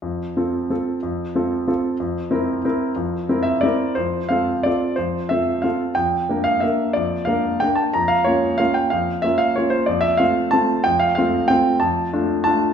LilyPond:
\new Staff \with { instrumentName = "Grand piano" } { \time 3/4 \key f \major \tempo 4 = 183 << { r2. | r2. | r2. | r4. e''8 d''4 |
c''4 f''4 d''4 | c''4 e''4 f''4 | g''4. f''8 e''4 | d''4 f''8 r8 g''8 a''8 |
bes''8 f''8 des''4 f''8 g''8 | f''4 e''8 f''8 des''8 c''8 | d''8 e''8 f''4 a''4 | g''8 f''8 f''4 g''4 |
\key d \minor a''2 a''4 | } \\ { f,4 <c' f' a'>4 <c' f' a'>4 | f,4 <c' f' a'>4 <c' f' a'>4 | f,4 <c' e' bes'>4 <c' e' bes'>4 | f,4 <c' e' bes'>4 <c' e' bes'>4 |
f,4 <c' f' a'>4 <c' f' a'>4 | f,4 <c' f' a'>4 <c' f' a'>4 | f,4 <bes d' bes'>4 <bes d' bes'>4 | f,4 <bes d' bes'>4 <bes d' bes'>4 |
f,4 <bes des' f'>4 <bes des' f'>4 | f,4 <bes des' f'>4 <bes des' f'>4 | f,4 <a c' f'>4 <a c' f'>4 | f,4 <a c' f'>4 <a c' f'>4 |
f,4 <a d' f'>4 <a d' f'>4 | } >> }